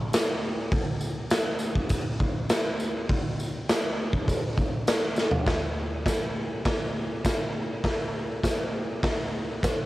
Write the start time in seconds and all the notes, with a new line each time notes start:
0.13 snare, open hi-hat, tambourine
0.72 kick, open hi-hat
1.01 tambourine
1.30 snare, open hi-hat, tambourine
1.59 tambourine
1.75 kick
1.89 kick, open hi-hat, tambourine
2.20 kick
2.49 snare, open hi-hat, tambourine
2.80 tambourine
3.09 kick, open hi-hat
3.40 tambourine
3.69 snare, open hi-hat, tambourine
4.13 kick
4.28 kick, open hi-hat, tambourine
4.58 kick, tambourine
4.87 snare, open hi-hat, tambourine
5.16 snare, tambourine
5.31 floor tom
5.46 kick, snare, open hi-hat
6.05 kick, snare, open hi-hat, tambourine
6.65 kick, snare, open hi-hat
7.25 kick, snare, open hi-hat, tambourine
7.84 kick, snare, open hi-hat
8.43 kick, snare, open hi-hat, tambourine
9.03 kick, snare, open hi-hat
9.63 kick, snare, open hi-hat, tambourine